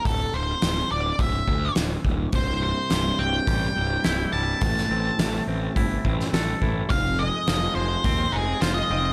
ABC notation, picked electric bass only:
X:1
M:4/4
L:1/8
Q:1/4=105
K:Ador
V:1 name="Picked electric bass" clef=bass
D,,, D,,, D,,, D,,, C,,, D,, D,,, D,,, | C,,,2 C,,, C,,, A,,, C,,, C,,, C,,, | A,,, A,,, A,,, A,,, G,,, A,,, A,,, A,,, | =F,,,2 F,,, F,,, _E,, F,,, F,,, F,,, |]